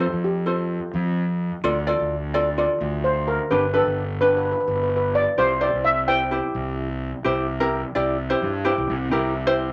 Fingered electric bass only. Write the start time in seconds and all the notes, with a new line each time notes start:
0.13 F2
0.94 F2
1.64 D2
2.00 D2
2.81 D2
3.51 G1
3.86 G1
4.68 G1
5.38 C2
5.73 C2
6.55 C2
7.25 C2
7.96 C2
8.42 G2
8.78 C2
8.89 C2
9.12 C2